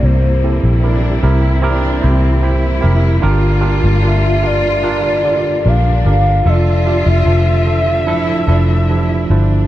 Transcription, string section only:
Already playing: C3 G3 A#3 E4
3.24 D3 F4
6.45 F3 A3 E5

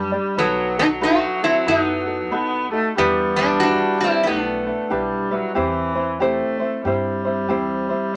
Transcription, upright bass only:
Already playing: F#2
0.37 B1
1.67 F#2
2.33 B1
2.98 E2
4.28 B1
4.91 B1
5.57 E2
6.85 G2
7.49 E2

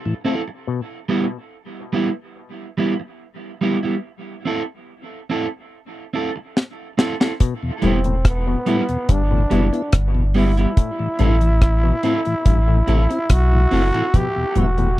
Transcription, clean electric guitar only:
0.25 C4 E4 A4
0.48 muted clean electric guitar stroke
1.09 G3 B3 E4
1.93 G3 B3 E4
2.78 G3 B3 E4
3.00 muted clean electric guitar stroke
3.61 G3 B3 E4
3.83 G3 B3 E4
4.45 C4 E4 A4
5.30 C4 E4 A4
6.13 C4 E4 A4
6.36 muted clean electric guitar stroke
6.98 C4 E4 A4
7.20 C4 E4 A4
7.82 G3 B3 E4
8.66 G3 B3 E4
9.50 G3 B3 E4
9.73 muted clean electric guitar stroke
10.35 G3 B3 E4
10.57 G3 B3 E4
11.19 C4 E4 A4
12.04 C4 E4 A4
12.87 C4 E4 A4
13.10 muted clean electric guitar stroke
13.71 C4 E4 A4
13.94 C4 E4 A4

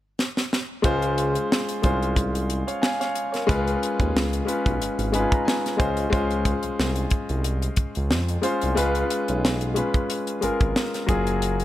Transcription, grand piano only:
0.82 G#3 C#4 F4 C5
1.82 G#3 C#4 F4 C5
2.67 C#5 F5
2.82 F5 G#5
3.00 C#5 F5
3.32 A#4 C#5
3.47 G#3 C#4 F4 B4
4.45 G#3 C#4 F4 B4
5.12 G#3 C#4 D#4 B4 G#5
5.20 F4
5.31 A#5
5.45 G#5
5.77 G#3 C#4 F4 C5 D#5
6.10 G#3 C#4 F4 C5
8.42 G#3 C#4 F4 C5
8.75 G#3 C#4 F4 B4
9.74 G#3 C#4 F4 B4
10.41 G#3 C#4 F4 A#4
11.06 F#3 A#3 F4 G#4

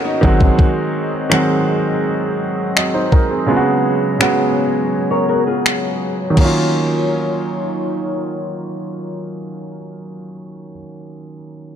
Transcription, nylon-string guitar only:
0.04 D#4 F#4
5.11 A#4 C#5
5.29 F#4 A#4
5.47 F4 G#4

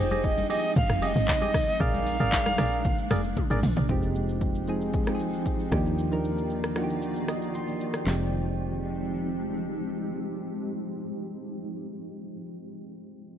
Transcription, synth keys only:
3.89 F3 G#3 C4 D#4 G4
4.68 F3 G#3 C4 D#4 G#4
5.07 F3 G#3 C4 D#4 G4
5.15 G#4
5.72 F3 A#3 D4 D#4 G4
6.11 F3 A#3 D4 D#4 A#4
6.76 F3 A#3 D4 D#4 F#4
6.84 G4
7.29 D#5
7.55 C6
8.04 F3 G#3 C4
8.09 D#4 G4

